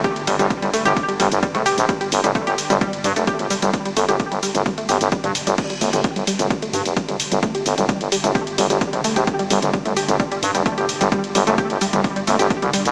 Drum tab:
CC |----------------|----------------|----------------|x---------------|
RD |xxxxxxxxxxxxxxxx|xxxxxxxxxxxxxxxx|xxxxxxxxxxxxxxxx|xxxxxxxxxxxxxxxx|
HH |xxoxxxoxoxoxxxox|xxoxxxoxxxoxxxox|xxoxxxoxoxoxxxox|xxoxxxoxxxoxxxox|
SH |x-xxx-xxx-xxx-xx|x-xxx-xxx-xxx-xx|x-xxx-xxx-xxx-xx|x-xxx-xxx-xxx-xx|
T2 |---o---o-----o--|---o---o-----o--|---o---o-----o--|---o---o-----o--|
BD |o---o---o---o---|o---o---o---o---|o---o---o---o---|o---o---o---o---|

CC |----------------|----------------|----------------|
RD |xxxxxxxxxxxxxxxx|xxxxxxxxxxxxxxxx|xxxxxxxxxxxxxxxx|
HH |xxoxxxoxoxoxxxox|xxoxxxoxxxoxxxox|xxoxxxoxoxoxxxox|
SH |x-xxx-xxx-xxx-xx|x-xxx-xxx-xxx-xx|x-xxx-xxx-xxx-xx|
T2 |---o---o-----o--|---o---o-----o--|---o---o-----o--|
BD |o---o---o---o---|o---o---o---o---|o---o---o---o---|